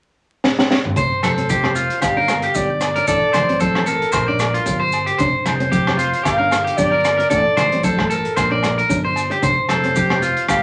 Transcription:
0.44 snare
0.59 snare
0.71 snare
0.85 mid tom
0.96 F1 C5, muted nylon-string guitar stroke, kick, closed hi-hat, maracas
1.23 F1 A4 C5, cross-stick, closed hi-hat, muted conga, high conga, low agogo, maracas
1.38 C4, closed hi-hat
1.49 G4, kick, closed hi-hat, high conga, maracas
1.63 C4, cross-stick, low agogo
1.75 F4, closed hi-hat, maracas
1.90 closed hi-hat
2.01 G1 G4 F5, kick, cross-stick, closed hi-hat, low agogo, maracas
2.17 D4 A#4
2.28 A#3, cross-stick, closed hi-hat, low agogo, maracas
2.42 G4, closed hi-hat
2.55 G1 D4 D5, kick, closed hi-hat, high conga, maracas
2.81 cross-stick, closed hi-hat, muted conga, low agogo, maracas
2.96 D4 A#4, closed hi-hat
3.07 A1 D4 A4 D5, kick, closed hi-hat, maracas
3.33 A1 C5, cross-stick, closed hi-hat, muted conga, high conga, low conga, low agogo, maracas
3.49 C4, closed hi-hat
3.60 A4 C5, kick, closed hi-hat, high conga, maracas
3.75 C4, cross-stick, low agogo
3.86 A4 A#4, closed hi-hat, maracas
4.02 closed hi-hat
4.12 A#1 C5, kick, cross-stick, closed hi-hat, low agogo, maracas
4.28 D4 D5
4.39 A#3, cross-stick, closed hi-hat, low agogo, maracas
4.54 F4, closed hi-hat
4.66 G1, muted nylon-string guitar stroke, kick, closed hi-hat, high conga, maracas
4.80 C5
4.92 closed hi-hat, muted conga, low agogo, maracas
5.06 G4, closed hi-hat
5.18 F1 D4 C5, kick, closed hi-hat, maracas
5.45 F1 C5, cross-stick, closed hi-hat, muted conga, high conga, low agogo, maracas
5.60 C4, closed hi-hat
5.71 G4, kick, closed hi-hat, high conga, maracas
5.87 C4, cross-stick, low agogo
5.97 F4, closed hi-hat, maracas
6.13 closed hi-hat
6.23 G1 G4 F5, kick, cross-stick, closed hi-hat, muted conga, low agogo, maracas
6.38 D4 A#4
6.51 A#3, cross-stick, closed hi-hat, low agogo, maracas
6.64 G4, closed hi-hat
6.77 G1 D4 D5, kick, closed hi-hat, high conga, maracas
6.91 A#4
7.05 cross-stick, closed hi-hat, muted conga, low agogo, maracas
7.17 A#4, muted nylon-string guitar stroke, closed hi-hat
7.30 A1 D4 A4 D5, kick, closed hi-hat, maracas
7.57 A1 C5, cross-stick, closed hi-hat, muted conga, high conga, low conga, low agogo, maracas
7.72 C4, closed hi-hat
7.83 A4 C5, kick, closed hi-hat, high conga, maracas
7.98 A3, kick, cross-stick, low agogo
8.10 A4 A#4, closed hi-hat, maracas
8.25 closed hi-hat
8.36 A#1 C5, kick, cross-stick, closed hi-hat, low agogo, maracas
8.51 D4 D5
8.63 A#3, cross-stick, closed hi-hat, low agogo, maracas
8.78 A#4, closed hi-hat
8.89 G1 D4, kick, closed hi-hat, high conga, maracas
9.04 C5
9.16 closed hi-hat, muted conga, low agogo, maracas
9.30 D4 G4, closed hi-hat
9.42 F1 D4 C5, kick, closed hi-hat, maracas
9.69 F1 A4 C5, cross-stick, closed hi-hat, muted conga, high conga, low agogo, maracas
9.84 C4, closed hi-hat
9.96 G4, kick, closed hi-hat, high conga, maracas
10.10 C4, cross-stick, low agogo
10.22 F4, closed hi-hat, maracas
10.37 closed hi-hat
10.48 G1 G4 F5, kick, cross-stick, closed hi-hat, low agogo, maracas

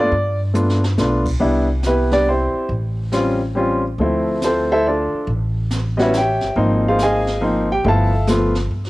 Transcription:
Already playing: A3 B3 D4 F4
0.00 D5
0.12 G2, brush sweep, kick
0.54 A3 B3 D4 F4, hi-hat pedal, high tom
0.70 snare
0.84 snare
0.97 B1 A3 B3 D4 F4, snare, hi-hat pedal
1.25 kick, crash
1.40 C2 G3 B3 D4 E4, brush sweep, kick
1.83 B3 E4 G4 B4, snare, hi-hat pedal
2.11 G3 B3 D4 G4 D5, snare
2.29 C4 E4 G4 C5
2.54 muted upright bass stroke
2.69 A1, brush sweep, kick
3.12 G3 C4 C#4 F4, snare, hi-hat pedal
3.55 G3 C4 C#4 F4
3.98 D2 F3 A3 C4 E4, brush sweep, kick
4.42 C4 F4 A4 C5, snare, hi-hat pedal
4.72 E4 A4 C5 E5
4.87 D4 F4 A4 D5
5.13 muted upright bass stroke
5.27 A1, brush sweep, kick
5.71 snare, hi-hat pedal
5.97 G3 B3 C#4 F#4 D#5, snare
6.02 E4 B4 C#5 E5
6.13 snare, hi-hat pedal
6.18 G4 C#5 E5 G5
6.41 G1, snare
6.56 G#1 F3 A#3 C4 D#4, brush sweep, kick
6.88 F4 G#4 C5 F5
6.99 snare, hi-hat pedal
7.03 G#4 D#5 F5 G#5
7.27 snare
7.41 F3 A#3 C4 D#4
7.72 G4 G5
7.84 G1 F3 A3 B3 E4 F5 A5, brush sweep, kick
7.88 A4 E5
8.27 F3 A3 B3 F4, snare, hi-hat pedal
8.55 snare
8.71 G2
8.85 snare

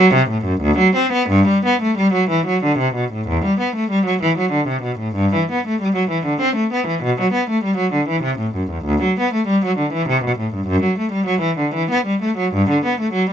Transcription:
Already playing: F#3
0.14 C3
0.30 A2
0.45 F#2
0.61 D2
0.78 F#3
0.95 C4
1.13 B3
1.29 G2
1.48 G3
1.65 B3
1.82 A3
1.98 G3
2.13 F#3
2.30 E3
2.46 F#3
2.64 D3
2.78 C3
2.95 B2
3.13 A2
3.28 E2
3.44 G3
3.60 B3
3.76 A3
3.90 G3
4.06 F#3
4.22 E3
4.38 F#3
4.52 D3
4.68 C3
4.83 B2
4.99 A2
5.15 G2
5.35 E3
5.51 B3
5.67 A3
5.81 G3
5.96 F#3
6.10 E3
6.25 D3
6.41 C4
6.56 A3
6.73 B3
6.87 E3
7.02 B2
7.20 F#3
7.33 B3
7.49 A3
7.64 G3
7.77 F#3
7.93 D3
8.09 E3
8.23 C3
8.39 A2
8.55 F#2
8.71 E2
8.85 D2
9.02 F#3
9.20 B3
9.34 A3
9.47 G3
9.65 F#3
9.78 D3
9.93 E3
10.09 C3
10.24 B2
10.39 A2
10.54 G2
10.67 F#2
10.83 F#3
10.98 A3
11.12 G3
11.26 F#3
11.41 E3
11.58 D3
11.74 E3
11.91 B3
12.06 G3
12.22 A3
12.37 F#3
12.54 G2
12.70 D3
12.85 B3
13.00 A3
13.13 F#3
13.30 G3

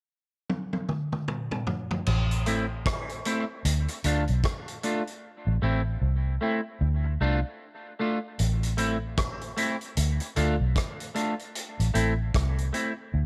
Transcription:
0.49 high tom
0.73 high tom
0.89 mid tom
1.12 mid tom
1.28 mid tom
1.51 mid tom
1.67 floor tom
1.91 floor tom
2.06 A1, crash
2.31 closed hi-hat
2.46 A3 C4 E4, closed hi-hat
2.86 kick, cross-stick, closed hi-hat
3.09 closed hi-hat
3.25 A3 C4 E4, closed hi-hat
3.65 D2, closed hi-hat
3.88 muted clean electric guitar stroke, closed hi-hat
4.04 D2 A3 D4 F4, closed hi-hat
4.28 B1, closed hi-hat
4.44 kick, cross-stick, closed hi-hat
4.68 closed hi-hat
4.83 A3 D4 F4, closed hi-hat
5.07 closed hi-hat
5.47 A1
5.62 A1 A3 C4 E4
6.01 C2
6.41 A3 C4 E4
6.81 D2
7.04 muted clean electric guitar stroke
7.21 C2 A3 D4 F4
7.99 A3 D4 F4
8.39 A1, closed hi-hat
8.63 closed hi-hat
8.77 A3 C4 E4, closed hi-hat
9.17 kick, cross-stick, closed hi-hat
9.41 closed hi-hat
9.57 A3 C4 E4, closed hi-hat
9.81 closed hi-hat
9.97 D2, closed hi-hat
10.20 muted clean electric guitar stroke, closed hi-hat
10.36 D2 A3 D4 F4, closed hi-hat
10.60 B1
10.76 kick, cross-stick, closed hi-hat
11.00 closed hi-hat
11.15 A3 D4 F4, closed hi-hat
11.39 closed hi-hat
11.55 closed hi-hat
11.80 A1, closed hi-hat
11.94 A1 A3 C4 E4, closed hi-hat
12.34 C2, kick, cross-stick, closed hi-hat
12.58 closed hi-hat
12.73 A3 C4 E4, closed hi-hat
13.14 D2

